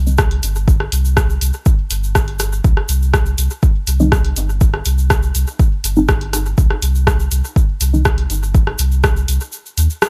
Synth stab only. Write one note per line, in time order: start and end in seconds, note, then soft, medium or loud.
0.06 0.23 D#3 medium
0.06 0.23 G3 medium
0.06 0.23 C4 medium
0.06 0.23 D#4 medium
4.00 4.16 D#3 medium
4.00 4.16 G3 medium
4.00 4.16 C4 medium
4.00 4.16 D#4 medium
5.97 6.13 D#3 medium
5.97 6.13 G3 medium
5.97 6.13 C4 medium
5.97 6.13 D#4 medium
7.93 8.09 D#3 medium
7.93 8.09 G3 medium
7.93 8.09 C4 medium
7.93 8.09 D#4 medium